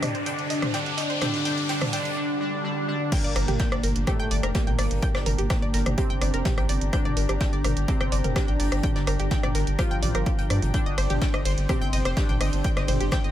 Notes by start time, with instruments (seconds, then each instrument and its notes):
Already playing: analog synth pad G2 C3 G3 D4 G4, analog polysynth D3 D4, riser
0.02 synth pluck D#5, cross-stick, closed hi-hat, mid tom, open hi-hat
0.15 synth pluck C5, closed hi-hat
0.26 analog polysynth D3 D4, synth pluck G5, closed hi-hat
0.39 closed hi-hat
0.50 synth pluck D#5, closed hi-hat, open hi-hat
0.62 synth pluck C5, cross-stick, closed hi-hat, mid tom
0.74 analog polysynth D3 D4, synth pluck G5, snare, closed hi-hat
0.86 closed hi-hat
0.97 synth pluck D#5, snare, closed hi-hat, open hi-hat
1.10 synth pluck C5, closed hi-hat
1.21 analog polysynth D3 D4, synth pluck G5, cross-stick, snare, closed hi-hat, mid tom
1.34 snare, closed hi-hat
1.45 analog polysynth D3 D4, synth pluck G5, closed hi-hat, open hi-hat
1.58 closed hi-hat
1.69 analog polysynth D3 D4, synth pluck G5, snare, closed hi-hat
1.81 cross-stick, closed hi-hat, mid tom
1.92 analog polysynth D3 D4, synth pluck G5, snare, closed hi-hat, open hi-hat
2.05 closed hi-hat
2.17 analog polysynth D3 D4, swell
2.41 analog polysynth D3 D4
2.64 analog polysynth D3 D4
2.88 analog polysynth D3 D4
3.12 analog polysynth A#2 A#3, analog synth pad D4 G4 G5 A#5, synth pluck G5 G6, kick, closed hi-hat, crash
3.24 analog synth bass G1, synth pluck D5 D6, closed hi-hat
3.36 analog synth bass G1, synth pluck A#4 A#5, cross-stick, closed hi-hat, open hi-hat
3.48 analog synth bass G1, synth pluck G4 G5, closed hi-hat, mid tom
3.59 synth pluck G5 G6, kick, snare, closed hi-hat
3.72 analog synth bass G1, synth pluck D5 D6, cross-stick, closed hi-hat
3.83 analog synth bass G1, synth pluck A#4 A#5, closed hi-hat, open hi-hat
3.96 analog synth bass G1, closed hi-hat
4.07 analog polysynth A2 A3, synth pluck G4 G5, kick, cross-stick, closed hi-hat, mid tom
4.19 analog synth bass G1, synth pluck G5 G6, closed hi-hat
4.31 analog synth bass G1, synth pluck D5 D6, closed hi-hat, open hi-hat
4.43 analog synth bass F1, synth pluck A#4 A#5, cross-stick, closed hi-hat
4.54 analog polysynth A#2 A#3, synth pluck G4 G5, kick, snare, closed hi-hat
4.67 analog synth bass A1, synth pluck G5 G6, closed hi-hat, mid tom
4.79 analog synth bass G1, synth pluck D5 D6, cross-stick, open hi-hat
4.91 analog synth bass G1, closed hi-hat
5.02 synth pluck G5 G6, kick, closed hi-hat
5.15 analog synth bass G1, synth pluck D5 D6, cross-stick, snare, closed hi-hat
5.26 analog synth bass G1, synth pluck A#4 A#5, closed hi-hat, mid tom, open hi-hat
5.38 analog synth bass G1, synth pluck G4 G5, closed hi-hat
5.50 synth pluck G5 G6, kick, cross-stick, snare, closed hi-hat
5.62 analog synth bass G1, synth pluck D5 D6, closed hi-hat
5.73 analog synth bass G1, synth pluck A#4 A#5, snare, closed hi-hat, open hi-hat
5.86 analog synth bass G1, cross-stick, closed hi-hat, mid tom
5.98 analog polysynth C3 C4, synth pluck G4 G5, kick, closed hi-hat
6.10 analog synth bass G1, synth pluck G5 G6, closed hi-hat
6.21 analog synth bass G1, synth pluck D5 D6, cross-stick, closed hi-hat, open hi-hat
6.34 analog synth bass F1, synth pluck A#4 A#5, closed hi-hat
6.45 synth pluck G4 G5, kick, snare, closed hi-hat, mid tom
6.58 analog synth bass A1, synth pluck G5 G6, cross-stick, closed hi-hat
6.69 analog synth bass G1, synth pluck D5 D6, closed hi-hat, open hi-hat
6.81 analog synth bass G1, closed hi-hat
6.93 analog polysynth D3 D4, synth pluck G5 G6, kick, cross-stick, closed hi-hat
7.05 analog synth bass G1, synth pluck D5 D6, closed hi-hat, mid tom
7.17 analog synth bass G1, synth pluck A#4 A#5, closed hi-hat, open hi-hat
7.29 analog synth bass G1, synth pluck G4 G5, cross-stick, closed hi-hat
7.40 synth pluck G5 G6, kick, snare, closed hi-hat
7.53 analog synth bass G1, synth pluck D5 D6, closed hi-hat
7.64 analog synth bass G1, synth pluck A#4 A#5, cross-stick, closed hi-hat, mid tom, open hi-hat
7.77 analog synth bass G1, closed hi-hat
7.88 analog polysynth C3 C4, synth pluck G4 G5, kick, closed hi-hat
8.00 analog synth bass G1, synth pluck G5 G6, cross-stick, closed hi-hat
8.12 analog synth bass G1, synth pluck D5 D6, closed hi-hat, open hi-hat
8.24 analog synth bass F1, synth pluck A#4 A#5, closed hi-hat, mid tom
8.36 analog polysynth D3 D4, synth pluck G4 G5, kick, cross-stick, snare, closed hi-hat
8.48 analog synth bass A1, synth pluck G5 G6, closed hi-hat
8.60 analog synth bass G1, synth pluck D5 D6, open hi-hat
8.72 analog synth bass G1, cross-stick, closed hi-hat
8.83 synth pluck G5 G6, kick, closed hi-hat, mid tom
8.96 analog synth bass G1, synth pluck D5 D6, snare, closed hi-hat
9.07 analog synth bass G1, synth pluck A#4 A#5, cross-stick, closed hi-hat, open hi-hat
9.18 analog synth bass G1, synth pluck G4 G5, closed hi-hat
9.31 synth pluck G5 G6, kick, snare, closed hi-hat
9.43 analog synth bass G1, synth pluck D5 D6, cross-stick, closed hi-hat, mid tom
9.55 analog synth bass G1, synth pluck A#4 A#5, snare, closed hi-hat, open hi-hat
9.67 analog synth bass G1, closed hi-hat
9.79 analog polysynth F3 F4, synth pluck G4 G5, kick, cross-stick, closed hi-hat
9.91 analog synth bass G1, synth pluck G5 G6, closed hi-hat
10.02 analog synth bass A1, synth pluck D5 D6, closed hi-hat, mid tom, open hi-hat
10.15 analog synth bass G1, synth pluck A#4 A#5, cross-stick, closed hi-hat
10.26 synth pluck G4 G5, kick, closed hi-hat
10.39 analog synth bass G1, synth pluck G5 G6, closed hi-hat
10.50 analog synth bass G2, synth pluck D5 D6, cross-stick, open hi-hat
10.62 analog synth bass G1, closed hi-hat, mid tom
10.74 analog polysynth D3 D4, analog synth pad C4 G4 C5, synth pluck G5 G6, kick, closed hi-hat
10.86 analog synth bass G1, synth pluck D#5 D#6, closed hi-hat
10.98 analog synth bass G1, synth pluck C5 C6, cross-stick, closed hi-hat, open hi-hat, ride
11.10 analog synth bass G1, synth pluck G4 G5, closed hi-hat, mid tom
11.21 synth pluck G5 G6, kick, snare, closed hi-hat
11.34 analog synth bass G1, synth pluck D#5 D#6, cross-stick, closed hi-hat
11.45 analog synth bass G1, synth pluck C5 C6, closed hi-hat, open hi-hat, ride
11.58 analog synth bass G1, closed hi-hat
11.69 analog polysynth C3 C4, synth pluck G4 G5, kick, cross-stick, closed hi-hat, mid tom
11.81 analog synth bass G1, synth pluck G5 G6, closed hi-hat
11.93 analog synth bass G1, synth pluck D#5 D#6, closed hi-hat, open hi-hat, ride
12.05 analog synth bass F1, synth pluck C5 C6, cross-stick, closed hi-hat
12.17 analog polysynth D3 D4, synth pluck G4 G5, kick, snare, closed hi-hat
12.29 analog synth bass A1, synth pluck G5 G6, closed hi-hat, mid tom
12.40 analog synth bass G1, synth pluck D#5 D#6, cross-stick, open hi-hat, ride
12.53 analog synth bass G1, closed hi-hat
12.64 synth pluck G5 G6, kick, closed hi-hat
12.77 analog synth bass G1, synth pluck D#5 D#6, cross-stick, snare, closed hi-hat
12.88 analog synth bass G1, synth pluck C5 C6, closed hi-hat, mid tom, open hi-hat, ride
13.00 analog synth bass G1, synth pluck G4 G5, closed hi-hat
13.11 synth pluck G5 G6, kick, cross-stick, snare, closed hi-hat
13.24 analog synth bass G1, synth pluck D#5 D#6, closed hi-hat